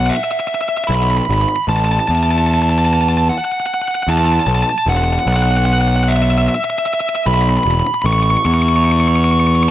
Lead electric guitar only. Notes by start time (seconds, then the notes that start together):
0.06 E5 F#5
0.16 E5
0.24 E5
0.31 E5
0.40 E5
0.47 E5
0.55 E5
0.61 E5
0.69 E5
0.77 E5
0.84 E5 B5
0.95 B5
1.03 B5
1.11 B5
1.17 B5
1.25 B5
1.34 B5
1.41 B5
1.49 B5
1.56 B5
1.69 A5
1.76 A5
1.85 A5
1.92 A5
2.00 A5
2.08 A5
2.15 A5
2.23 A5
2.31 A5
2.38 A5
2.47 A5
2.54 A5
2.62 A5
2.70 A5
2.78 A5
2.85 A5
2.93 A5
3.01 A5
3.09 A5
3.17 A5
3.29 F#5
3.38 F#5
3.45 F#5
3.52 F#5
3.60 F#5
3.66 F#5
3.74 F#5
3.82 F#5
3.88 F#5
3.95 F#5
4.03 F#5
4.10 A5
4.18 A5
4.25 A5
4.32 A5
4.40 A5
4.47 A5
4.55 A5
4.63 A5
4.70 A5
4.78 A5
4.89 F#5
4.97 F#5
5.04 F#5
5.13 F#5
5.19 F#5
5.28 F#5
5.36 F#5
5.43 F#5
5.51 F#5
5.57 F#5
5.66 F#5
5.73 F#5
5.81 F#5
5.88 F#5
5.96 F#5
6.04 F#5
6.08 E5
6.16 E5
6.22 E5
6.30 E5
6.38 E5
6.48 E5
6.55 E5
6.64 E5
6.70 E5
6.78 E5
6.86 E5
6.93 E5
7.00 E5
7.09 E5
7.15 E5
7.27 B5
7.34 B5
7.42 B5
7.49 B5
7.57 B5
7.63 B5
7.71 B5
7.79 B5
7.87 B5
7.94 B5
8.02 B5
8.06 C#6
8.13 C#6
8.23 C#6
8.31 C#6
8.37 C#6
8.45 C#6
8.54 C#6
8.62 C#6
8.69 C#6
8.76 C#6
8.85 C#6
8.92 C#6
9.00 C#6
9.08 C#6
9.16 C#6
9.24 C#6
9.31 C#6
9.40 C#6
9.47 C#6
9.55 C#6
9.63 C#6